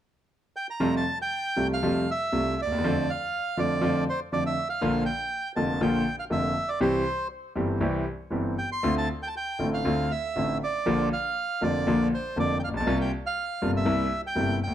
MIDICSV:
0, 0, Header, 1, 3, 480
1, 0, Start_track
1, 0, Key_signature, -1, "major"
1, 0, Tempo, 502092
1, 761, Time_signature, 4, 2, 24, 8
1, 14094, End_track
2, 0, Start_track
2, 0, Title_t, "Bandoneon"
2, 0, Program_c, 0, 23
2, 540, Note_on_c, 0, 79, 72
2, 642, Note_off_c, 0, 79, 0
2, 671, Note_on_c, 0, 82, 60
2, 906, Note_off_c, 0, 82, 0
2, 927, Note_on_c, 0, 81, 69
2, 1133, Note_off_c, 0, 81, 0
2, 1166, Note_on_c, 0, 79, 85
2, 1601, Note_off_c, 0, 79, 0
2, 1656, Note_on_c, 0, 77, 67
2, 2010, Note_off_c, 0, 77, 0
2, 2016, Note_on_c, 0, 76, 68
2, 2493, Note_off_c, 0, 76, 0
2, 2503, Note_on_c, 0, 74, 73
2, 2965, Note_on_c, 0, 77, 75
2, 2972, Note_off_c, 0, 74, 0
2, 3434, Note_on_c, 0, 74, 69
2, 3440, Note_off_c, 0, 77, 0
2, 3865, Note_off_c, 0, 74, 0
2, 3915, Note_on_c, 0, 72, 65
2, 4015, Note_off_c, 0, 72, 0
2, 4138, Note_on_c, 0, 74, 63
2, 4242, Note_off_c, 0, 74, 0
2, 4266, Note_on_c, 0, 76, 69
2, 4477, Note_off_c, 0, 76, 0
2, 4489, Note_on_c, 0, 77, 67
2, 4818, Note_off_c, 0, 77, 0
2, 4833, Note_on_c, 0, 79, 75
2, 5278, Note_off_c, 0, 79, 0
2, 5317, Note_on_c, 0, 81, 62
2, 5559, Note_off_c, 0, 81, 0
2, 5565, Note_on_c, 0, 79, 64
2, 5889, Note_off_c, 0, 79, 0
2, 5921, Note_on_c, 0, 77, 61
2, 5971, Note_off_c, 0, 77, 0
2, 6041, Note_on_c, 0, 76, 62
2, 6391, Note_on_c, 0, 74, 51
2, 6402, Note_off_c, 0, 76, 0
2, 6499, Note_off_c, 0, 74, 0
2, 6516, Note_on_c, 0, 72, 60
2, 6957, Note_off_c, 0, 72, 0
2, 8205, Note_on_c, 0, 79, 71
2, 8316, Note_off_c, 0, 79, 0
2, 8338, Note_on_c, 0, 84, 69
2, 8557, Note_off_c, 0, 84, 0
2, 8583, Note_on_c, 0, 81, 70
2, 8688, Note_off_c, 0, 81, 0
2, 8821, Note_on_c, 0, 79, 70
2, 8866, Note_on_c, 0, 81, 61
2, 8877, Note_off_c, 0, 79, 0
2, 8937, Note_off_c, 0, 81, 0
2, 8956, Note_on_c, 0, 79, 68
2, 9274, Note_off_c, 0, 79, 0
2, 9309, Note_on_c, 0, 77, 69
2, 9671, Note_on_c, 0, 76, 71
2, 9675, Note_off_c, 0, 77, 0
2, 10112, Note_off_c, 0, 76, 0
2, 10168, Note_on_c, 0, 74, 67
2, 10602, Note_off_c, 0, 74, 0
2, 10639, Note_on_c, 0, 77, 70
2, 11119, Note_on_c, 0, 74, 63
2, 11123, Note_off_c, 0, 77, 0
2, 11553, Note_off_c, 0, 74, 0
2, 11608, Note_on_c, 0, 72, 59
2, 11837, Note_off_c, 0, 72, 0
2, 11850, Note_on_c, 0, 74, 67
2, 12028, Note_off_c, 0, 74, 0
2, 12040, Note_on_c, 0, 79, 54
2, 12062, Note_off_c, 0, 79, 0
2, 12086, Note_on_c, 0, 77, 65
2, 12133, Note_off_c, 0, 77, 0
2, 12206, Note_on_c, 0, 81, 68
2, 12413, Note_off_c, 0, 81, 0
2, 12440, Note_on_c, 0, 79, 62
2, 12541, Note_off_c, 0, 79, 0
2, 12680, Note_on_c, 0, 77, 84
2, 13109, Note_off_c, 0, 77, 0
2, 13161, Note_on_c, 0, 76, 66
2, 13588, Note_off_c, 0, 76, 0
2, 13641, Note_on_c, 0, 79, 75
2, 13955, Note_off_c, 0, 79, 0
2, 13990, Note_on_c, 0, 79, 72
2, 14091, Note_off_c, 0, 79, 0
2, 14094, End_track
3, 0, Start_track
3, 0, Title_t, "Grand piano"
3, 0, Program_c, 1, 0
3, 764, Note_on_c, 1, 48, 59
3, 766, Note_on_c, 1, 53, 64
3, 768, Note_on_c, 1, 55, 52
3, 769, Note_on_c, 1, 41, 64
3, 771, Note_on_c, 1, 57, 51
3, 771, Note_on_c, 1, 65, 58
3, 967, Note_off_c, 1, 48, 0
3, 968, Note_off_c, 1, 53, 0
3, 969, Note_off_c, 1, 41, 0
3, 969, Note_off_c, 1, 55, 0
3, 971, Note_off_c, 1, 57, 0
3, 971, Note_off_c, 1, 65, 0
3, 1495, Note_on_c, 1, 55, 34
3, 1497, Note_on_c, 1, 48, 46
3, 1499, Note_on_c, 1, 36, 40
3, 1499, Note_on_c, 1, 57, 38
3, 1500, Note_on_c, 1, 65, 41
3, 1698, Note_off_c, 1, 55, 0
3, 1699, Note_off_c, 1, 48, 0
3, 1700, Note_off_c, 1, 36, 0
3, 1700, Note_off_c, 1, 57, 0
3, 1700, Note_off_c, 1, 65, 0
3, 1745, Note_on_c, 1, 48, 47
3, 1747, Note_on_c, 1, 41, 53
3, 1747, Note_on_c, 1, 53, 56
3, 1748, Note_on_c, 1, 55, 44
3, 1748, Note_on_c, 1, 57, 48
3, 1753, Note_on_c, 1, 65, 52
3, 1944, Note_off_c, 1, 48, 0
3, 1945, Note_off_c, 1, 53, 0
3, 1946, Note_off_c, 1, 41, 0
3, 1946, Note_off_c, 1, 55, 0
3, 1946, Note_off_c, 1, 57, 0
3, 1948, Note_off_c, 1, 65, 0
3, 2221, Note_on_c, 1, 48, 42
3, 2224, Note_on_c, 1, 36, 44
3, 2226, Note_on_c, 1, 55, 30
3, 2226, Note_on_c, 1, 57, 35
3, 2230, Note_on_c, 1, 65, 38
3, 2424, Note_off_c, 1, 36, 0
3, 2425, Note_off_c, 1, 55, 0
3, 2425, Note_off_c, 1, 57, 0
3, 2426, Note_off_c, 1, 48, 0
3, 2427, Note_off_c, 1, 65, 0
3, 2536, Note_on_c, 1, 38, 32
3, 2588, Note_off_c, 1, 38, 0
3, 2599, Note_on_c, 1, 39, 50
3, 2649, Note_off_c, 1, 39, 0
3, 2658, Note_on_c, 1, 40, 54
3, 2708, Note_off_c, 1, 40, 0
3, 2714, Note_on_c, 1, 41, 61
3, 2715, Note_on_c, 1, 57, 51
3, 2716, Note_on_c, 1, 53, 72
3, 2718, Note_on_c, 1, 50, 54
3, 2719, Note_on_c, 1, 65, 60
3, 2907, Note_off_c, 1, 41, 0
3, 2907, Note_off_c, 1, 57, 0
3, 2908, Note_off_c, 1, 50, 0
3, 2909, Note_off_c, 1, 53, 0
3, 2909, Note_off_c, 1, 65, 0
3, 3414, Note_on_c, 1, 41, 49
3, 3416, Note_on_c, 1, 50, 37
3, 3417, Note_on_c, 1, 53, 45
3, 3418, Note_on_c, 1, 57, 36
3, 3424, Note_on_c, 1, 65, 41
3, 3614, Note_off_c, 1, 50, 0
3, 3615, Note_off_c, 1, 57, 0
3, 3616, Note_off_c, 1, 41, 0
3, 3616, Note_off_c, 1, 53, 0
3, 3618, Note_off_c, 1, 65, 0
3, 3644, Note_on_c, 1, 53, 60
3, 3650, Note_on_c, 1, 41, 65
3, 3650, Note_on_c, 1, 57, 47
3, 3650, Note_on_c, 1, 65, 62
3, 3651, Note_on_c, 1, 50, 45
3, 3849, Note_off_c, 1, 53, 0
3, 3849, Note_off_c, 1, 57, 0
3, 3849, Note_off_c, 1, 65, 0
3, 3850, Note_off_c, 1, 41, 0
3, 3850, Note_off_c, 1, 50, 0
3, 4132, Note_on_c, 1, 41, 42
3, 4134, Note_on_c, 1, 50, 33
3, 4135, Note_on_c, 1, 53, 43
3, 4138, Note_on_c, 1, 57, 30
3, 4138, Note_on_c, 1, 65, 39
3, 4329, Note_off_c, 1, 41, 0
3, 4329, Note_off_c, 1, 50, 0
3, 4330, Note_off_c, 1, 53, 0
3, 4331, Note_off_c, 1, 57, 0
3, 4331, Note_off_c, 1, 65, 0
3, 4600, Note_on_c, 1, 50, 55
3, 4605, Note_on_c, 1, 46, 62
3, 4605, Note_on_c, 1, 53, 51
3, 4605, Note_on_c, 1, 58, 54
3, 4608, Note_on_c, 1, 34, 65
3, 4608, Note_on_c, 1, 65, 65
3, 4801, Note_off_c, 1, 50, 0
3, 4803, Note_off_c, 1, 46, 0
3, 4803, Note_off_c, 1, 53, 0
3, 4803, Note_off_c, 1, 58, 0
3, 4805, Note_off_c, 1, 34, 0
3, 4805, Note_off_c, 1, 65, 0
3, 5318, Note_on_c, 1, 58, 35
3, 5319, Note_on_c, 1, 41, 45
3, 5320, Note_on_c, 1, 29, 49
3, 5320, Note_on_c, 1, 50, 39
3, 5320, Note_on_c, 1, 53, 33
3, 5327, Note_on_c, 1, 65, 43
3, 5515, Note_off_c, 1, 41, 0
3, 5515, Note_off_c, 1, 58, 0
3, 5516, Note_off_c, 1, 29, 0
3, 5516, Note_off_c, 1, 50, 0
3, 5516, Note_off_c, 1, 53, 0
3, 5519, Note_off_c, 1, 65, 0
3, 5553, Note_on_c, 1, 50, 53
3, 5554, Note_on_c, 1, 34, 56
3, 5556, Note_on_c, 1, 65, 59
3, 5557, Note_on_c, 1, 53, 49
3, 5558, Note_on_c, 1, 46, 62
3, 5558, Note_on_c, 1, 58, 46
3, 5750, Note_off_c, 1, 50, 0
3, 5751, Note_off_c, 1, 34, 0
3, 5752, Note_off_c, 1, 53, 0
3, 5752, Note_off_c, 1, 65, 0
3, 5753, Note_off_c, 1, 46, 0
3, 5753, Note_off_c, 1, 58, 0
3, 6022, Note_on_c, 1, 50, 40
3, 6025, Note_on_c, 1, 29, 47
3, 6026, Note_on_c, 1, 58, 36
3, 6027, Note_on_c, 1, 53, 31
3, 6028, Note_on_c, 1, 41, 44
3, 6028, Note_on_c, 1, 65, 42
3, 6225, Note_off_c, 1, 50, 0
3, 6226, Note_off_c, 1, 29, 0
3, 6226, Note_off_c, 1, 58, 0
3, 6227, Note_off_c, 1, 41, 0
3, 6227, Note_off_c, 1, 53, 0
3, 6228, Note_off_c, 1, 65, 0
3, 6503, Note_on_c, 1, 55, 53
3, 6504, Note_on_c, 1, 52, 54
3, 6506, Note_on_c, 1, 36, 64
3, 6506, Note_on_c, 1, 60, 55
3, 6509, Note_on_c, 1, 67, 69
3, 6510, Note_on_c, 1, 48, 69
3, 6705, Note_off_c, 1, 52, 0
3, 6705, Note_off_c, 1, 55, 0
3, 6706, Note_off_c, 1, 36, 0
3, 6706, Note_off_c, 1, 60, 0
3, 6707, Note_off_c, 1, 67, 0
3, 6708, Note_off_c, 1, 48, 0
3, 7224, Note_on_c, 1, 43, 42
3, 7224, Note_on_c, 1, 52, 38
3, 7225, Note_on_c, 1, 55, 36
3, 7227, Note_on_c, 1, 67, 43
3, 7229, Note_on_c, 1, 60, 33
3, 7230, Note_on_c, 1, 31, 47
3, 7427, Note_off_c, 1, 43, 0
3, 7427, Note_off_c, 1, 52, 0
3, 7428, Note_off_c, 1, 55, 0
3, 7429, Note_off_c, 1, 67, 0
3, 7430, Note_off_c, 1, 31, 0
3, 7430, Note_off_c, 1, 60, 0
3, 7460, Note_on_c, 1, 36, 61
3, 7461, Note_on_c, 1, 52, 52
3, 7462, Note_on_c, 1, 55, 47
3, 7463, Note_on_c, 1, 48, 58
3, 7463, Note_on_c, 1, 60, 44
3, 7468, Note_on_c, 1, 67, 53
3, 7668, Note_off_c, 1, 36, 0
3, 7668, Note_off_c, 1, 52, 0
3, 7669, Note_off_c, 1, 48, 0
3, 7669, Note_off_c, 1, 55, 0
3, 7669, Note_off_c, 1, 60, 0
3, 7672, Note_off_c, 1, 67, 0
3, 7939, Note_on_c, 1, 52, 38
3, 7941, Note_on_c, 1, 55, 34
3, 7946, Note_on_c, 1, 43, 37
3, 7947, Note_on_c, 1, 31, 44
3, 7947, Note_on_c, 1, 60, 30
3, 7949, Note_on_c, 1, 67, 40
3, 8152, Note_off_c, 1, 52, 0
3, 8153, Note_off_c, 1, 55, 0
3, 8155, Note_off_c, 1, 43, 0
3, 8156, Note_off_c, 1, 31, 0
3, 8156, Note_off_c, 1, 60, 0
3, 8157, Note_off_c, 1, 67, 0
3, 8441, Note_on_c, 1, 50, 65
3, 8444, Note_on_c, 1, 57, 54
3, 8445, Note_on_c, 1, 60, 53
3, 8448, Note_on_c, 1, 38, 70
3, 8448, Note_on_c, 1, 65, 57
3, 8647, Note_off_c, 1, 50, 0
3, 8647, Note_off_c, 1, 57, 0
3, 8648, Note_off_c, 1, 60, 0
3, 8650, Note_off_c, 1, 38, 0
3, 8650, Note_off_c, 1, 65, 0
3, 9165, Note_on_c, 1, 50, 36
3, 9168, Note_on_c, 1, 33, 40
3, 9170, Note_on_c, 1, 45, 43
3, 9171, Note_on_c, 1, 60, 34
3, 9172, Note_on_c, 1, 57, 35
3, 9173, Note_on_c, 1, 65, 42
3, 9371, Note_off_c, 1, 50, 0
3, 9373, Note_off_c, 1, 33, 0
3, 9374, Note_off_c, 1, 45, 0
3, 9374, Note_off_c, 1, 60, 0
3, 9375, Note_off_c, 1, 57, 0
3, 9375, Note_off_c, 1, 65, 0
3, 9414, Note_on_c, 1, 50, 60
3, 9414, Note_on_c, 1, 60, 49
3, 9417, Note_on_c, 1, 38, 59
3, 9419, Note_on_c, 1, 57, 42
3, 9421, Note_on_c, 1, 65, 57
3, 9617, Note_off_c, 1, 60, 0
3, 9618, Note_off_c, 1, 38, 0
3, 9619, Note_off_c, 1, 50, 0
3, 9619, Note_off_c, 1, 57, 0
3, 9620, Note_off_c, 1, 65, 0
3, 9901, Note_on_c, 1, 50, 38
3, 9904, Note_on_c, 1, 33, 46
3, 9905, Note_on_c, 1, 60, 32
3, 9905, Note_on_c, 1, 65, 38
3, 9906, Note_on_c, 1, 45, 39
3, 9907, Note_on_c, 1, 57, 32
3, 10101, Note_off_c, 1, 50, 0
3, 10102, Note_off_c, 1, 33, 0
3, 10103, Note_off_c, 1, 45, 0
3, 10103, Note_off_c, 1, 60, 0
3, 10103, Note_off_c, 1, 65, 0
3, 10104, Note_off_c, 1, 57, 0
3, 10380, Note_on_c, 1, 53, 52
3, 10383, Note_on_c, 1, 50, 60
3, 10384, Note_on_c, 1, 34, 70
3, 10385, Note_on_c, 1, 46, 66
3, 10385, Note_on_c, 1, 58, 49
3, 10390, Note_on_c, 1, 65, 61
3, 10582, Note_off_c, 1, 53, 0
3, 10583, Note_off_c, 1, 50, 0
3, 10584, Note_off_c, 1, 34, 0
3, 10584, Note_off_c, 1, 46, 0
3, 10584, Note_off_c, 1, 58, 0
3, 10587, Note_off_c, 1, 65, 0
3, 11100, Note_on_c, 1, 50, 43
3, 11105, Note_on_c, 1, 41, 46
3, 11106, Note_on_c, 1, 53, 39
3, 11107, Note_on_c, 1, 58, 37
3, 11108, Note_on_c, 1, 29, 49
3, 11113, Note_on_c, 1, 65, 45
3, 11300, Note_off_c, 1, 50, 0
3, 11302, Note_off_c, 1, 41, 0
3, 11303, Note_off_c, 1, 53, 0
3, 11303, Note_off_c, 1, 58, 0
3, 11304, Note_off_c, 1, 29, 0
3, 11306, Note_off_c, 1, 65, 0
3, 11345, Note_on_c, 1, 50, 53
3, 11346, Note_on_c, 1, 46, 66
3, 11346, Note_on_c, 1, 58, 47
3, 11350, Note_on_c, 1, 34, 64
3, 11351, Note_on_c, 1, 53, 44
3, 11355, Note_on_c, 1, 65, 60
3, 11541, Note_off_c, 1, 50, 0
3, 11542, Note_off_c, 1, 46, 0
3, 11542, Note_off_c, 1, 58, 0
3, 11544, Note_off_c, 1, 34, 0
3, 11544, Note_off_c, 1, 53, 0
3, 11546, Note_off_c, 1, 65, 0
3, 11817, Note_on_c, 1, 50, 41
3, 11823, Note_on_c, 1, 29, 45
3, 11828, Note_on_c, 1, 41, 41
3, 11828, Note_on_c, 1, 53, 35
3, 11828, Note_on_c, 1, 65, 45
3, 11829, Note_on_c, 1, 58, 38
3, 12017, Note_off_c, 1, 50, 0
3, 12019, Note_off_c, 1, 29, 0
3, 12022, Note_off_c, 1, 41, 0
3, 12022, Note_off_c, 1, 53, 0
3, 12022, Note_off_c, 1, 58, 0
3, 12022, Note_off_c, 1, 65, 0
3, 12120, Note_on_c, 1, 33, 36
3, 12176, Note_off_c, 1, 33, 0
3, 12176, Note_on_c, 1, 34, 49
3, 12234, Note_off_c, 1, 34, 0
3, 12238, Note_on_c, 1, 35, 65
3, 12295, Note_off_c, 1, 35, 0
3, 12300, Note_on_c, 1, 48, 69
3, 12300, Note_on_c, 1, 55, 56
3, 12302, Note_on_c, 1, 58, 51
3, 12305, Note_on_c, 1, 36, 76
3, 12306, Note_on_c, 1, 65, 71
3, 12497, Note_off_c, 1, 55, 0
3, 12498, Note_off_c, 1, 48, 0
3, 12498, Note_off_c, 1, 58, 0
3, 12499, Note_off_c, 1, 36, 0
3, 12500, Note_off_c, 1, 65, 0
3, 13018, Note_on_c, 1, 55, 41
3, 13019, Note_on_c, 1, 48, 39
3, 13020, Note_on_c, 1, 43, 47
3, 13022, Note_on_c, 1, 58, 38
3, 13024, Note_on_c, 1, 31, 48
3, 13024, Note_on_c, 1, 65, 42
3, 13213, Note_off_c, 1, 48, 0
3, 13213, Note_off_c, 1, 55, 0
3, 13214, Note_off_c, 1, 43, 0
3, 13215, Note_off_c, 1, 58, 0
3, 13216, Note_off_c, 1, 31, 0
3, 13216, Note_off_c, 1, 65, 0
3, 13241, Note_on_c, 1, 48, 61
3, 13243, Note_on_c, 1, 55, 51
3, 13244, Note_on_c, 1, 58, 49
3, 13246, Note_on_c, 1, 36, 63
3, 13246, Note_on_c, 1, 64, 65
3, 13445, Note_off_c, 1, 48, 0
3, 13445, Note_off_c, 1, 55, 0
3, 13445, Note_off_c, 1, 58, 0
3, 13446, Note_off_c, 1, 36, 0
3, 13446, Note_off_c, 1, 64, 0
3, 13722, Note_on_c, 1, 48, 41
3, 13725, Note_on_c, 1, 31, 47
3, 13728, Note_on_c, 1, 55, 34
3, 13728, Note_on_c, 1, 58, 36
3, 13729, Note_on_c, 1, 43, 41
3, 13734, Note_on_c, 1, 64, 42
3, 13922, Note_off_c, 1, 48, 0
3, 13923, Note_off_c, 1, 31, 0
3, 13925, Note_off_c, 1, 43, 0
3, 13925, Note_off_c, 1, 55, 0
3, 13925, Note_off_c, 1, 58, 0
3, 13927, Note_off_c, 1, 64, 0
3, 14027, Note_on_c, 1, 38, 42
3, 14083, Note_off_c, 1, 38, 0
3, 14094, End_track
0, 0, End_of_file